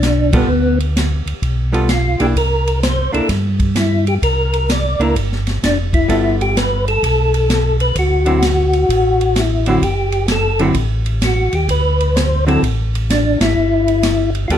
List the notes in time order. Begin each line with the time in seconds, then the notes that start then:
Already playing: B1 D4
0.03 snare, hi-hat pedal, ride
0.33 G3 B3 F4 A4, kick, ride
0.48 D2
0.80 ride
0.97 snare, hi-hat pedal, ride
1.26 D2, ride
1.42 B1, kick, ride
1.72 G3 B3 F4 A4, ride
1.89 F4, snare, hi-hat pedal, ride
2.20 B1 A#3 D4 E4 G4, ride
2.36 C2 A#4, kick, ride
2.67 ride
2.83 C5, snare, hi-hat pedal, ride
3.12 C2 A#3 D4 E4 A4, ride
3.29 G2, kick, snare, ride
3.60 kick, ride
3.76 E4, snare, hi-hat pedal, ride
4.07 G4, ride
4.22 C2 A#4, kick, ride
4.53 ride
4.69 D5, snare, hi-hat pedal, ride
4.99 C#2 A#3 D4 E4 A#4, ride
5.16 G1, kick, ride
5.32 snare
5.47 snare, ride
5.63 F1 D4, snare, hi-hat pedal, ride
5.93 E4, kick, ride
6.08 G1 G3 B3 F4 A4, kick, ride
6.41 G4, ride
6.57 B4, snare, hi-hat pedal, ride
6.88 A4, ride
7.03 B1, kick, ride
7.34 ride
7.50 snare, hi-hat pedal, ride
7.80 B4, ride
7.96 D2 F#4, kick, ride
8.26 D3 F#3 C4 E4, ride
8.42 snare, hi-hat pedal, ride
8.73 ride
8.89 A1, kick, ride
9.21 ride
9.36 E4, snare, hi-hat pedal, ride
9.66 D3 F#3 C4 E4 F#4, ride
9.82 F#1 G4, kick, ride
10.12 ride
10.28 A4, snare, hi-hat pedal, ride
10.59 D3 F#3 C4 E4, ride
10.64 F#4
10.74 A1, kick, ride
11.06 ride
11.22 F#4, snare, hi-hat pedal, ride
11.53 D#2 G4, ride
11.68 D2 B4, kick, ride
12.00 ride
12.16 C5, snare, hi-hat pedal, ride
12.47 D3 F#3 C4 E4 A4, ride
12.63 A1, kick, ride
12.95 ride
13.10 D4, snare, hi-hat pedal, ride
13.40 G#1 E4, snare, ride
13.56 G1
13.88 ride
14.03 snare, hi-hat pedal, ride
14.35 ride
14.48 D2 G3 B3 F4 A4, kick, ride
14.52 G4